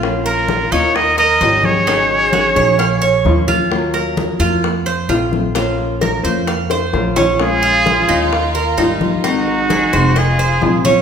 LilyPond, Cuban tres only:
\new Staff \with { instrumentName = "Cuban tres" } { \time 4/4 \key bes \minor \tempo 4 = 130 f'8 bes'4 ees'4 bes'8 ees'4 | ees'4 ges'8 des''8 f''8 des''4 f'8~ | f'8 bes'4 f'4 c''8 f'4 | f'4 bes'8 c''8 f''8 c''4 des'8 |
r8 f'4 ees'4 bes'8 ees'4 | ees'4 aes'8 c''8 ees''8 c''4 des'8 | }